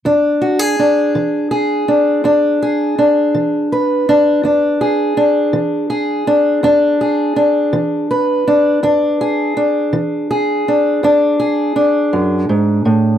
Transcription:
\new Staff \with { instrumentName = "Steel-string acoustic guitar" } { \time 12/8 \key e \mixolydian \tempo 4. = 55 << { d'8 fis'16 gis'16 d'4 gis'8 d'8 d'8 gis'8 d'4 b'8 d'8 | d'8 gis'8 d'4 gis'8 d'8 d'8 gis'8 d'4 b'8 d'8 | d'8 gis'8 d'4 gis'8 d'8 d'8 gis'8 d'2 | } \\ { e,4 r8 e4 r8 e,4 r8 e4 r8 | e,4 r8 e4 r8 e,4 r8 e4 r8 | e,4 r8 e4 r8 e,4 r8 fis,8 gis,8 a,8 | } >> }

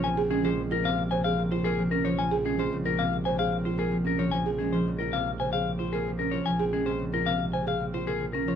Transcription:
<<
  \new Staff \with { instrumentName = "Clean electric guitar" } { \time 4/4 \key bes \minor \tempo 4 = 112 aes''16 r16 aes'16 c''16 r16 bes'16 f''16 r16 aes''16 f''16 r16 c''16 aes'16 r16 bes'16 des''16 | aes''16 r16 aes'16 c''16 r16 bes'16 f''16 r16 aes''16 f''16 r16 c''16 aes'16 r16 bes'16 des''16 | aes''16 r16 aes'16 c''16 r16 bes'16 f''16 r16 aes''16 f''16 r16 c''16 aes'16 r16 bes'16 des''16 | aes''16 r16 aes'16 c''16 r16 bes'16 f''16 r16 aes''16 f''16 r16 c''16 aes'16 r16 bes'16 des''16 | }
  \new Staff \with { instrumentName = "Marimba" } { \time 4/4 \key bes \minor r16 aes'16 des'16 aes'16 r16 f'16 c'16 r16 c''16 aes'16 r16 f'16 bes'16 r16 des'16 f'16 | r16 aes'16 des'16 aes'16 r16 f'16 c'16 r16 c''16 aes'16 r16 f'16 bes'16 r16 des'16 f'16 | r16 aes'16 des'16 aes'16 r16 f'16 c'16 r16 c''16 aes'16 r16 f'16 bes'16 r16 des'16 f'16 | r16 aes'16 des'16 aes'16 r16 f'16 c'16 r16 c''16 aes'16 r16 f'16 bes'16 r16 des'16 f'16 | }
  \new Staff \with { instrumentName = "Harp" } { \clef bass \time 4/4 \key bes \minor <c des f aes bes c'>16 c'16 aes16 f8 bes16 c16 bes16 des16 c'16 bes8 bes16 f16 bes16 f16 | f16 c'16 aes16 f16 des16 bes16 c16 bes16 des16 c'16 bes8 bes16 f16 bes16 f16 | f16 c'16 aes16 f16 des16 bes16 c16 bes16 des16 c'16 bes8 bes16 f16 bes16 f16 | f16 c'16 aes16 f16 des16 bes16 c16 bes16 des16 c'16 bes8 bes16 f16 bes16 f16 | }
  \new Staff \with { instrumentName = "Double bass" } { \clef bass \time 4/4 \key bes \minor bes,,1~ | bes,,1~ | bes,,1~ | bes,,1 | }
>>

